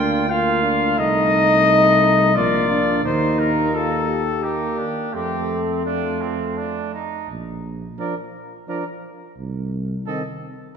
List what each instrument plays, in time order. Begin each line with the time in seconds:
Already playing: tuba D2, trombone A#3, french horn D4, trumpet F4, cornet G5
0.29 trombone A#3, trumpet F4, french horn F4, cornet F5
0.64 french horn D4
0.98 tuba C2, trombone A3, trumpet D#4, french horn D#4, cornet D#5
2.35 tuba A#1, trombone A#3, trumpet F4, french horn F4, cornet D5
2.71 french horn D4
3.04 tuba D#2, trombone A#3, trumpet D#4, french horn D#4, cornet C5
3.39 cornet A#4
3.73 french horn F4, cornet A4
4.09 french horn G4
4.43 trombone A#3, trumpet D#4, cornet G4
4.78 trumpet D4
5.13 tuba F2, trombone A3, trumpet C4, cornet G4, french horn A4
5.85 trombone A3, trumpet D4, cornet F4
6.21 trumpet C4
6.57 trumpet D4
6.94 trumpet D#4
7.29 tuba A#1
7.99 trombone F3, french horn D4, trumpet A#4, cornet D5
8.68 trombone F3, french horn D4, trumpet A#4, cornet D5
9.37 tuba C2
10.06 trombone D#3, french horn C4, trumpet A4, cornet D#5